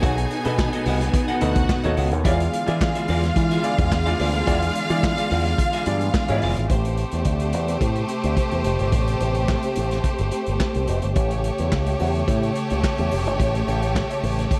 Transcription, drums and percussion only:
0.03 kick, closed hi-hat
0.18 closed hi-hat
0.31 closed hi-hat
0.45 closed hi-hat
0.58 kick, snare, clap
0.73 closed hi-hat
0.86 open hi-hat
1.01 snare, closed hi-hat
1.14 kick, closed hi-hat
1.28 closed hi-hat
1.41 closed hi-hat
1.55 kick, closed hi-hat
1.69 kick, snare, clap
1.84 closed hi-hat
1.97 open hi-hat
2.12 closed hi-hat
2.25 kick, closed hi-hat
2.40 closed hi-hat
2.53 closed hi-hat
2.67 closed hi-hat
2.81 kick, snare, clap
2.95 closed hi-hat
3.08 open hi-hat
3.23 snare, closed hi-hat
3.36 kick, closed hi-hat
3.51 closed hi-hat
3.64 closed hi-hat
3.78 kick, closed hi-hat
3.92 kick, snare, clap
4.06 closed hi-hat
4.19 open hi-hat
4.34 closed hi-hat
4.47 kick, closed hi-hat
4.62 closed hi-hat
4.75 closed hi-hat
4.90 closed hi-hat
5.03 kick, snare, clap
5.18 closed hi-hat
5.31 open hi-hat
5.46 snare, closed hi-hat
5.58 kick, closed hi-hat
5.73 closed hi-hat
5.86 closed hi-hat
6.01 closed hi-hat
6.14 kick, snare, clap
6.28 closed hi-hat
6.42 open hi-hat
6.56 closed hi-hat
6.70 kick, closed hi-hat
6.85 closed hi-hat
6.97 closed hi-hat
7.12 closed hi-hat
7.25 kick, closed hi-hat
7.40 closed hi-hat
7.53 closed hi-hat
7.68 closed hi-hat
7.81 kick, closed hi-hat
7.96 closed hi-hat
8.08 closed hi-hat
8.24 closed hi-hat
8.37 kick, closed hi-hat
8.51 closed hi-hat
8.64 closed hi-hat
8.79 closed hi-hat
8.92 kick, closed hi-hat
9.08 closed hi-hat
9.20 closed hi-hat
9.35 closed hi-hat
9.48 kick, snare, clap
9.63 closed hi-hat
9.76 closed hi-hat
9.91 snare, closed hi-hat
10.04 kick, closed hi-hat
10.18 closed hi-hat
10.31 closed hi-hat
10.46 closed hi-hat
10.60 kick, snare, clap
10.74 closed hi-hat
10.87 closed hi-hat
11.02 closed hi-hat
11.16 kick, closed hi-hat
11.31 closed hi-hat
11.44 closed hi-hat
11.58 closed hi-hat
11.72 kick, snare, clap
11.86 closed hi-hat
12.00 open hi-hat
12.15 closed hi-hat
12.28 kick, closed hi-hat
12.43 closed hi-hat
12.55 closed hi-hat
12.70 closed hi-hat
12.84 kick, snare, clap
12.98 closed hi-hat
13.11 open hi-hat
13.27 closed hi-hat
13.40 kick, closed hi-hat
13.55 closed hi-hat
13.68 closed hi-hat
13.82 closed hi-hat
13.96 kick, snare, clap
14.11 closed hi-hat
14.23 open hi-hat
14.39 snare, closed hi-hat
14.51 kick, closed hi-hat

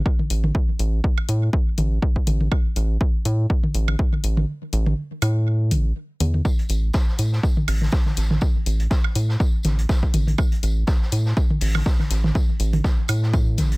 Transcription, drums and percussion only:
0.06 kick
0.19 high tom
0.30 open hi-hat
0.44 mid tom
0.55 kick
0.79 open hi-hat
1.04 kick
1.18 high woodblock
1.29 open hi-hat
1.53 kick
1.78 open hi-hat, high tom
2.02 kick
2.16 kick
2.27 open hi-hat, high tom
2.41 high tom
2.52 kick, high woodblock
2.76 open hi-hat
3.01 kick
3.25 open hi-hat
3.50 kick
3.63 high tom
3.75 open hi-hat
3.88 high tom, high woodblock
3.99 kick
4.13 high tom
4.24 open hi-hat
4.37 mid tom
4.73 open hi-hat
4.86 mid tom
5.22 open hi-hat, high woodblock
5.71 open hi-hat, high tom
6.20 open hi-hat, high tom
6.34 high tom
6.45 kick, tambourine
6.59 closed hi-hat
6.69 open hi-hat, tambourine
6.93 kick, snare, tambourine
7.08 snare
7.18 open hi-hat, tambourine
7.32 snare
7.43 kick, tambourine
7.57 high tom
7.68 open hi-hat, high woodblock
7.81 snare, high tom
7.92 kick, snare, tambourine
8.06 snare, high tom
8.17 snare, open hi-hat, tambourine
8.30 snare, mid tom
8.41 kick, tambourine
8.66 open hi-hat, tambourine
8.80 closed hi-hat
8.90 kick, snare, tambourine
9.04 high woodblock
9.15 open hi-hat, tambourine
9.29 snare
9.40 kick, tambourine
9.63 snare, open hi-hat, high tom, tambourine
9.79 closed hi-hat
9.89 kick, snare, tambourine
10.03 kick
10.14 open hi-hat, high tom, tambourine
10.27 closed hi-hat, high tom
10.38 kick, tambourine, high woodblock
10.52 closed hi-hat
10.63 open hi-hat, tambourine
10.87 kick, snare, tambourine
11.02 snare
11.12 open hi-hat, tambourine
11.25 snare
11.37 kick, tambourine
11.50 high tom
11.61 open hi-hat
11.75 snare, high tom, high woodblock
11.86 kick, snare, tambourine
11.99 snare, high tom
12.10 snare, open hi-hat, tambourine
12.24 snare, mid tom
12.35 kick, tambourine
12.60 open hi-hat, tambourine
12.73 closed hi-hat, mid tom
12.84 kick, snare, tambourine
13.08 open hi-hat, tambourine, high woodblock
13.22 snare
13.33 kick, tambourine
13.58 snare, open hi-hat, high tom, tambourine
13.72 closed hi-hat

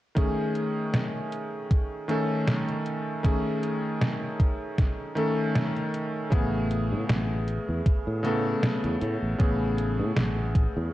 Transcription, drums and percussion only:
0.17 kick, closed hi-hat
0.55 closed hi-hat
0.94 snare, closed hi-hat
1.32 closed hi-hat
1.71 kick, closed hi-hat
2.09 closed hi-hat
2.47 snare, closed hi-hat
2.68 closed hi-hat
2.86 closed hi-hat
3.24 kick, closed hi-hat
3.63 closed hi-hat
4.01 snare, closed hi-hat
4.40 kick, closed hi-hat
4.78 kick, snare, closed hi-hat
5.17 closed hi-hat
5.55 snare, closed hi-hat
5.77 closed hi-hat
5.94 closed hi-hat
6.32 kick, closed hi-hat
6.71 closed hi-hat
7.09 snare, closed hi-hat
7.48 closed hi-hat
7.86 kick, closed hi-hat
8.25 closed hi-hat
8.63 snare, closed hi-hat
8.84 closed hi-hat
9.01 closed hi-hat
9.40 kick, closed hi-hat
9.78 closed hi-hat
10.17 snare, closed hi-hat
10.55 kick, closed hi-hat

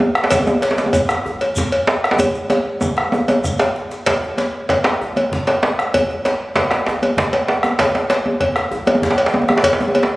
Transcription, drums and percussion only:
0.00 djembe tone
0.15 bombo rim, djembe slap
0.24 djembe slap
0.31 bombo low, cowbell, djembe slap, djembe bass, shekere
0.40 djembe tone
0.47 djembe tone, shekere
0.62 cowbell, djembe slap
0.71 djembe slap
0.78 djembe slap, shekere
0.86 djembe tone
0.93 bombo rim, bombo low, cowbell, shekere
1.09 bombo rim, djembe slap, shekere
1.26 djembe slap, djembe bass
1.41 cowbell, djembe tone
1.56 bombo low, djembe slap, shekere
1.72 cowbell
1.87 djembe slap
2.04 bombo rim, djembe slap
2.11 djembe slap
2.19 bombo low, cowbell, djembe tone, djembe bass, shekere
2.35 djembe tone, shekere
2.50 bombo rim, cowbell, djembe slap, djembe tone, shekere
2.81 bombo rim, bombo low, djembe tone, shekere
2.97 bombo rim, djembe slap
3.12 bombo rim, djembe tone, djembe bass
3.28 cowbell, djembe slap, djembe tone, shekere
3.44 bombo rim, bombo low, djembe bass, shekere
3.59 bombo rim, cowbell, djembe slap, djembe bass, shekere
3.76 djembe slap
3.91 djembe slap, shekere
4.06 bombo low, cowbell, djembe slap, djembe bass
4.23 djembe tone
4.38 cowbell, djembe slap, djembe tone
4.69 bombo rim, bombo low, cowbell, djembe slap
4.84 bombo rim, djembe slap
5.01 djembe slap, djembe bass
5.16 cowbell, djembe tone
5.32 bombo low, djembe slap
5.47 cowbell, djembe slap
5.63 djembe slap
5.79 bombo rim, djembe slap
5.94 bombo low, cowbell, djembe tone, djembe bass
6.10 djembe tone
6.25 cowbell, djembe slap
6.56 bombo rim, bombo low, cowbell, djembe slap
6.71 bombo rim, djembe slap
6.86 djembe slap, djembe bass
7.02 cowbell, djembe tone
7.17 bombo low, djembe slap
7.33 cowbell, djembe slap
7.48 djembe slap
7.63 bombo rim, djembe slap, djembe tone
7.79 bombo low, cowbell, djembe slap, djembe bass
7.95 djembe slap, djembe tone
8.10 cowbell, djembe slap
8.26 djembe tone
8.40 bombo rim, bombo low, cowbell
8.56 bombo rim, djembe slap
8.71 djembe slap, djembe bass
8.87 cowbell, djembe tone
8.95 djembe tone
9.02 bombo low, djembe slap, djembe tone
9.10 djembe slap
9.18 cowbell
9.26 djembe slap
9.34 djembe tone
9.42 djembe tone
9.48 bombo rim, djembe slap, djembe tone
9.57 djembe slap
9.63 bombo low, cowbell, djembe bass
9.73 djembe slap
9.79 bombo rim, djembe tone
9.88 djembe tone
9.95 bombo rim, cowbell, djembe tone
10.03 djembe slap
10.10 bombo rim

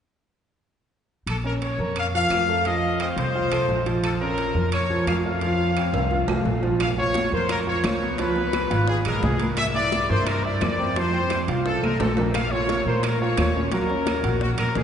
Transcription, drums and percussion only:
1.27 high timbale, claves
1.62 high timbale, low timbale
1.96 high timbale, claves
2.30 high timbale, low timbale, claves
2.65 high timbale
3.00 high timbale, low timbale, claves
3.18 high timbale
3.52 high timbale, claves
3.69 low timbale
3.86 high timbale
4.04 high timbale, claves
4.38 high timbale, low timbale
4.72 high timbale, claves
5.07 high timbale, low timbale, claves
5.41 high timbale
5.77 high timbale, low timbale, claves
5.94 high timbale
6.11 high timbale
6.28 low timbale, claves
6.45 low timbale
6.63 low timbale
6.80 high bongo, high conga, high timbale, claves
6.98 high conga
7.14 high bongo, high conga, high timbale, low timbale
7.49 high bongo, high conga, high timbale, claves
7.67 high conga
7.84 high bongo, low bongo, high conga, high timbale, low timbale, claves
8.02 high conga
8.18 high bongo, high conga, high timbale
8.36 high bongo, high conga
8.53 high bongo, high conga, high timbale, low timbale, claves
8.71 high bongo, high conga, high timbale
8.88 high bongo, high conga
9.05 high conga, high timbale, claves
9.22 high bongo, low bongo, high conga, low timbale
9.39 high bongo, high conga, high timbale
9.57 high bongo, high conga, high timbale, claves
9.76 high conga
9.92 high bongo, high conga, high timbale, low timbale
10.26 high bongo, high conga, high timbale, claves
10.45 high conga
10.61 high bongo, low bongo, high conga, high timbale, low timbale, claves
10.80 high conga
10.96 high bongo, high conga, high timbale
11.14 high bongo, high conga
11.30 high bongo, high conga, high timbale, low timbale, claves
11.48 high bongo, high conga, high timbale
11.66 high bongo, high conga, high timbale
11.83 high conga, claves
12.00 high bongo, low bongo, low timbale
12.17 high bongo, low conga, low timbale
12.34 high bongo, high conga, high timbale, claves
12.52 high conga
12.69 high bongo, high conga, high timbale, low timbale
13.03 high bongo, high conga, high timbale, claves
13.21 high conga
13.37 high bongo, low bongo, high conga, high timbale, low timbale, claves
13.55 high conga
13.72 high bongo, high conga, high timbale
13.90 high bongo, high conga
14.07 high bongo, high conga, high timbale, low timbale, claves
14.24 high bongo, high conga, high timbale
14.41 high bongo, high conga
14.58 high conga, high timbale, claves
14.75 high bongo, low bongo, high conga, low timbale

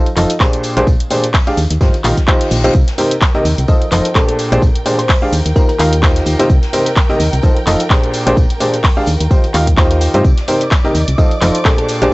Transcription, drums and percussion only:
0.06 closed hi-hat, tambourine
0.17 clap, open hi-hat, tambourine, cabasa
0.30 closed hi-hat, cabasa
0.40 kick, snare, clap, tambourine, cabasa
0.53 closed hi-hat
0.63 open hi-hat, tambourine, cabasa
0.77 closed hi-hat, tambourine, cabasa
0.87 kick, tambourine, cabasa
1.00 closed hi-hat, tambourine
1.11 open hi-hat, tambourine, cabasa
1.24 closed hi-hat, cabasa
1.33 kick, snare, clap, open hi-hat, cabasa
1.47 closed hi-hat, tambourine
1.57 open hi-hat, tambourine, cabasa
1.71 closed hi-hat, cabasa
1.81 kick, snare, tambourine, cabasa
1.93 closed hi-hat, tambourine
2.04 clap, open hi-hat, tambourine, cabasa
2.17 kick, snare, closed hi-hat, cabasa
2.27 kick, clap, tambourine, cabasa
2.41 closed hi-hat, tambourine
2.51 open hi-hat, tambourine, cabasa
2.64 closed hi-hat, tambourine, cabasa
2.74 kick, tambourine, cabasa
2.87 snare, closed hi-hat, tambourine
2.98 open hi-hat, tambourine, cabasa
3.11 closed hi-hat, cabasa
3.21 kick, snare, clap, tambourine, cabasa
3.34 closed hi-hat, tambourine
3.45 snare, open hi-hat, tambourine, cabasa
3.58 closed hi-hat, tambourine, cabasa
3.68 kick, tambourine, cabasa
3.81 closed hi-hat, tambourine
3.91 clap, open hi-hat, tambourine, cabasa
4.05 closed hi-hat, tambourine, cabasa
4.15 kick, snare, clap, tambourine, cabasa
4.29 closed hi-hat
4.39 open hi-hat, tambourine, cabasa
4.52 closed hi-hat, tambourine, cabasa
4.62 kick, tambourine, cabasa
4.75 closed hi-hat, tambourine
4.85 open hi-hat, tambourine, cabasa
4.99 closed hi-hat, tambourine, cabasa
5.08 kick, snare, clap, open hi-hat, tambourine, cabasa
5.23 tambourine
5.32 open hi-hat, tambourine, cabasa
5.45 closed hi-hat, tambourine, cabasa
5.56 kick, tambourine, cabasa
5.69 closed hi-hat, tambourine
5.79 clap, open hi-hat, tambourine, cabasa
5.93 closed hi-hat, tambourine, cabasa
6.03 kick, snare, clap, tambourine, cabasa
6.16 snare, closed hi-hat
6.26 open hi-hat, tambourine, cabasa
6.39 closed hi-hat, tambourine, cabasa
6.49 kick, tambourine, cabasa
6.63 snare, closed hi-hat, tambourine
6.73 open hi-hat, tambourine, cabasa
6.86 closed hi-hat, tambourine, cabasa
6.96 kick, snare, clap, tambourine, cabasa
7.09 closed hi-hat, tambourine
7.20 snare, open hi-hat, tambourine, cabasa
7.33 closed hi-hat, tambourine, cabasa
7.42 kick, tambourine, cabasa
7.57 closed hi-hat, tambourine
7.67 clap, open hi-hat, tambourine, cabasa
7.79 closed hi-hat, tambourine, cabasa
7.90 kick, snare, clap, tambourine, cabasa
8.03 closed hi-hat
8.13 open hi-hat, tambourine, cabasa
8.27 closed hi-hat, tambourine, cabasa
8.37 kick, tambourine, cabasa
8.50 closed hi-hat, tambourine
8.61 open hi-hat, tambourine, cabasa
8.74 closed hi-hat, tambourine, cabasa
8.83 kick, snare, clap, open hi-hat, tambourine, cabasa
8.97 tambourine
9.06 open hi-hat, tambourine, cabasa
9.20 closed hi-hat, tambourine, cabasa
9.31 kick, tambourine, cabasa
9.43 closed hi-hat, tambourine
9.54 clap, open hi-hat, tambourine, cabasa
9.67 kick, closed hi-hat, cabasa
9.77 kick, snare, clap, tambourine, cabasa
9.91 snare, closed hi-hat
10.01 open hi-hat, tambourine, cabasa
10.14 closed hi-hat, cabasa
10.24 kick, tambourine, cabasa
10.37 snare, closed hi-hat, tambourine
10.48 open hi-hat, tambourine, cabasa
10.61 closed hi-hat, tambourine, cabasa
10.71 kick, snare, clap, tambourine, cabasa
10.84 closed hi-hat, tambourine
10.95 open hi-hat, tambourine, cabasa
11.08 closed hi-hat, cabasa
11.18 kick, tambourine, cabasa
11.31 closed hi-hat, tambourine
11.41 clap, open hi-hat, tambourine, cabasa
11.55 closed hi-hat, cabasa
11.65 kick, snare, clap, tambourine, cabasa
11.78 closed hi-hat
11.88 open hi-hat, tambourine, cabasa
12.01 closed hi-hat, tambourine, cabasa

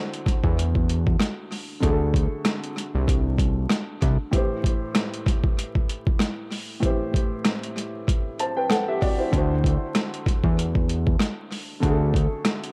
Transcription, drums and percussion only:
0.13 closed hi-hat
0.26 kick, closed hi-hat
0.44 kick
0.59 closed hi-hat
0.75 kick
0.89 closed hi-hat
1.07 kick
1.20 cross-stick, snare, closed hi-hat
1.52 open hi-hat
1.83 kick, closed hi-hat
2.14 kick, closed hi-hat
2.45 cross-stick, snare, closed hi-hat
2.64 closed hi-hat
2.78 closed hi-hat
3.08 kick, closed hi-hat
3.38 kick, closed hi-hat
3.69 cross-stick, snare, closed hi-hat
4.02 kick, closed hi-hat
4.33 kick, closed hi-hat
4.64 kick, closed hi-hat
4.95 cross-stick, snare, closed hi-hat
5.14 closed hi-hat
5.26 kick, closed hi-hat
5.44 kick
5.59 closed hi-hat
5.75 kick
5.89 closed hi-hat
6.07 kick
6.19 cross-stick, snare, closed hi-hat
6.52 open hi-hat
6.83 kick, closed hi-hat
7.14 kick, closed hi-hat
7.44 cross-stick, snare, closed hi-hat
7.63 closed hi-hat
7.78 closed hi-hat
8.08 kick, closed hi-hat
8.39 closed hi-hat
8.70 cross-stick, snare, closed hi-hat
9.02 kick, open hi-hat
9.33 kick, closed hi-hat
9.64 kick, closed hi-hat
9.95 cross-stick, snare, closed hi-hat
10.14 closed hi-hat
10.26 kick, closed hi-hat
10.44 kick
10.59 closed hi-hat
10.75 kick
10.89 closed hi-hat
11.07 kick
11.19 cross-stick, snare, closed hi-hat
11.52 open hi-hat
11.83 kick, closed hi-hat
12.14 kick, closed hi-hat
12.45 cross-stick, snare, closed hi-hat
12.64 closed hi-hat

